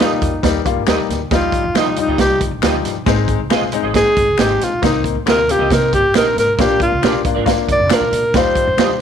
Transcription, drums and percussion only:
0.01 snare
0.11 muted conga, high conga
0.22 kick, closed hi-hat, low conga
0.43 kick, snare, closed hi-hat
0.56 muted conga
0.66 kick, closed hi-hat, high conga
0.87 finger snap, snare, closed hi-hat
1.00 high conga
1.10 snare, closed hi-hat, low conga
1.21 high conga
1.31 kick, snare, closed hi-hat, muted conga, low conga
1.52 kick, closed hi-hat
1.64 high conga
1.75 finger snap, snare, closed hi-hat, muted conga
1.87 muted conga, high conga
1.96 closed hi-hat, low conga
2.18 kick, snare, closed hi-hat
2.39 kick, closed hi-hat, high conga
2.62 finger snap, snare, closed hi-hat
2.74 muted conga, high conga
2.85 snare, closed hi-hat
2.95 high conga
3.06 kick, snare, closed hi-hat, muted conga, low conga
3.28 kick, closed hi-hat
3.39 high conga
3.50 finger snap, snare, closed hi-hat
3.62 muted conga, high conga
3.72 closed hi-hat, low conga
3.94 kick, snare, closed hi-hat
4.16 kick, closed hi-hat, high conga
4.38 finger snap, snare, closed hi-hat
4.50 high conga
4.61 snare, closed hi-hat
4.71 high conga
4.82 kick, snare, closed hi-hat, low conga
4.93 muted conga
5.04 kick, closed hi-hat
5.15 high conga
5.27 finger snap, snare, closed hi-hat, muted conga
5.38 high conga
5.48 closed hi-hat, low conga
5.71 kick, snare, closed hi-hat
5.91 kick, closed hi-hat, high conga
6.14 finger snap, snare, closed hi-hat
6.25 high conga
6.38 snare, closed hi-hat
6.46 high conga
6.57 kick, snare, closed hi-hat, muted conga, low conga
6.68 muted conga
6.80 kick, closed hi-hat
6.91 high conga
7.03 finger snap, snare, closed hi-hat
7.13 muted conga, high conga
7.24 kick, closed hi-hat, low conga
7.46 kick, snare, closed hi-hat
7.57 muted conga
7.67 kick, closed hi-hat, high conga
7.90 finger snap, snare, closed hi-hat
8.01 muted conga, high conga
8.13 closed hi-hat
8.22 high conga
8.34 kick, snare, closed hi-hat, low conga
8.55 kick, closed hi-hat
8.67 high conga
8.78 finger snap, snare, closed hi-hat
8.90 muted conga, high conga

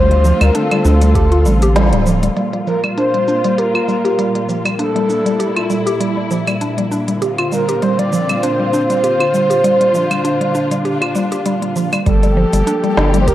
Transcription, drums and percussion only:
0.11 closed hi-hat
0.25 shaker
0.41 closed hi-hat, claves, shaker
0.55 closed hi-hat, shaker
0.72 closed hi-hat, claves
0.85 shaker
1.02 closed hi-hat, shaker
1.15 kick, closed hi-hat, shaker
1.32 closed hi-hat
1.46 shaker
1.62 closed hi-hat, shaker
1.76 snare, closed hi-hat, shaker
1.93 closed hi-hat
2.07 shaker
2.23 closed hi-hat, shaker
2.37 closed hi-hat, shaker
2.54 closed hi-hat
2.67 shaker
2.84 closed hi-hat, claves, shaker
2.98 closed hi-hat, shaker
3.14 closed hi-hat
3.28 shaker
3.44 closed hi-hat, shaker
3.58 closed hi-hat, shaker
3.75 claves
3.89 shaker
4.05 closed hi-hat, shaker
4.19 closed hi-hat, shaker
4.35 closed hi-hat
4.49 shaker
4.65 closed hi-hat, claves, shaker
4.79 closed hi-hat, shaker
4.96 closed hi-hat
5.10 shaker
5.26 closed hi-hat, shaker
5.40 closed hi-hat, shaker
5.56 closed hi-hat, claves
5.70 shaker
5.87 closed hi-hat, shaker
6.01 closed hi-hat, shaker
6.31 shaker
6.47 closed hi-hat, claves, shaker
6.61 closed hi-hat, shaker
6.78 closed hi-hat
6.92 shaker
7.08 closed hi-hat, shaker
7.22 closed hi-hat, shaker
7.38 closed hi-hat, claves
7.52 shaker
7.69 closed hi-hat, shaker
7.82 closed hi-hat, shaker
7.99 closed hi-hat
8.13 shaker
8.29 closed hi-hat, claves, shaker
8.43 closed hi-hat, shaker
8.74 shaker
8.90 closed hi-hat, shaker
9.04 closed hi-hat, shaker
9.20 closed hi-hat, claves
9.34 shaker
9.51 closed hi-hat, shaker
9.64 closed hi-hat, shaker
9.81 closed hi-hat
9.95 shaker
10.11 closed hi-hat, claves, shaker
10.25 closed hi-hat, shaker
10.41 closed hi-hat
10.55 shaker
10.71 closed hi-hat, shaker
10.85 closed hi-hat, shaker
11.02 closed hi-hat, claves
11.16 shaker
11.32 closed hi-hat, shaker
11.46 closed hi-hat, shaker
11.62 closed hi-hat
11.76 shaker
11.93 closed hi-hat, claves, shaker
12.06 kick, closed hi-hat, shaker
12.23 closed hi-hat, shaker
12.53 closed hi-hat, shaker
12.67 closed hi-hat, shaker
12.84 closed hi-hat, shaker
12.97 snare
13.14 closed hi-hat, shaker
13.28 kick, closed hi-hat, shaker

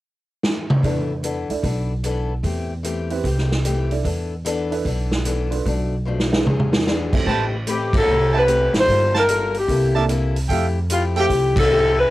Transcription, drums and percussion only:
0.43 snare
0.70 mid tom
0.83 kick, open hi-hat
1.24 closed hi-hat
1.50 open hi-hat
1.63 kick, open hi-hat
2.04 closed hi-hat
2.44 kick, open hi-hat
2.84 closed hi-hat
3.10 open hi-hat
3.24 kick, open hi-hat
3.38 snare
3.52 snare
3.65 closed hi-hat
3.91 open hi-hat
4.05 kick, open hi-hat
4.46 closed hi-hat
4.72 open hi-hat
4.85 kick, open hi-hat
5.12 snare
5.25 closed hi-hat
5.52 open hi-hat
5.66 kick, open hi-hat
6.19 snare
6.33 snare
6.46 mid tom
6.59 mid tom
6.73 snare
6.87 snare
7.13 kick, crash
7.27 kick
7.67 closed hi-hat
7.93 kick, ride
8.48 closed hi-hat
8.74 snare, open hi-hat
8.88 kick, open hi-hat
9.15 snare
9.29 closed hi-hat
9.54 open hi-hat
9.68 kick, open hi-hat
10.09 closed hi-hat
10.36 open hi-hat
10.49 kick, open hi-hat
10.90 closed hi-hat
11.16 open hi-hat
11.30 kick, open hi-hat
11.56 kick, ride

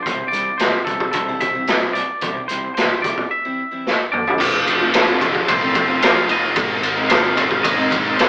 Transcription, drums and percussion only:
0.06 kick, closed hi-hat
0.33 closed hi-hat
0.59 snare, closed hi-hat
0.87 kick, closed hi-hat
1.00 kick
1.13 kick, closed hi-hat
1.40 kick, closed hi-hat
1.67 snare, closed hi-hat
1.95 closed hi-hat
2.21 kick, closed hi-hat
2.49 closed hi-hat
2.77 snare, closed hi-hat
3.04 kick, closed hi-hat
3.18 kick
3.87 snare
4.13 mid tom
4.27 floor tom
4.40 kick, crash
4.67 ride
4.94 snare, ride
5.21 kick, ride
5.35 kick
5.48 kick, ride
5.75 kick, ride
6.02 snare, ride
6.29 ride
6.56 kick, ride
6.83 ride
7.10 snare, ride
7.37 kick, ride
7.51 kick
7.64 kick, ride
7.91 kick, ride
8.19 snare, ride

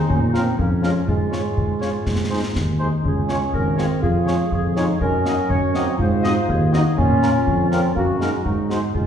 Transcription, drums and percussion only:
0.10 concert bass drum
0.35 snare
0.59 concert bass drum
0.84 snare
1.08 concert bass drum
1.33 snare
1.57 concert bass drum
1.82 snare
2.06 concert bass drum, snare
2.55 concert bass drum, snare
3.05 concert bass drum
3.29 snare
3.53 concert bass drum
3.78 snare
4.03 concert bass drum
4.28 snare
4.52 concert bass drum
4.77 snare
5.01 concert bass drum
5.26 snare
5.50 concert bass drum
5.75 snare
5.99 concert bass drum
6.24 snare
6.49 concert bass drum
6.74 snare
6.98 concert bass drum
7.23 snare
7.47 concert bass drum
7.72 snare
7.96 concert bass drum
8.21 snare
8.46 concert bass drum
8.70 snare
8.94 concert bass drum

